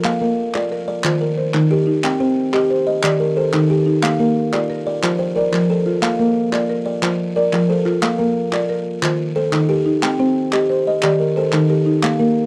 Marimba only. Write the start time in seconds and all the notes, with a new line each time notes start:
Already playing: F4 C5
0.21 A#3
0.55 D5
0.72 A#4
1.04 F4 C5
1.38 C5
1.54 D#3
1.71 A#4
1.87 D#4
2.20 C4
2.54 D#5
2.70 C5
3.03 G4 D5
3.36 C5
3.53 D#3
3.70 A#4
3.86 D#4
4.20 A#3
4.52 D5
4.70 A#4
5.03 F4 C5
5.36 D5
5.53 F3
5.69 C5
5.86 F4
6.19 A#3
6.52 D5
6.69 A#4
7.02 F4 C5
7.36 D5
7.53 F3
7.69 C5
7.85 F4
8.19 A#3
8.53 D5
8.69 A#4
9.02 F4 C5
9.36 C5
9.52 D#3
9.69 A#4
9.86 D#4
10.19 C4
10.53 D#5
10.69 C5
11.03 G4 D5
11.36 C5
11.53 D#3
11.70 A#4
11.86 D#4
12.20 A#3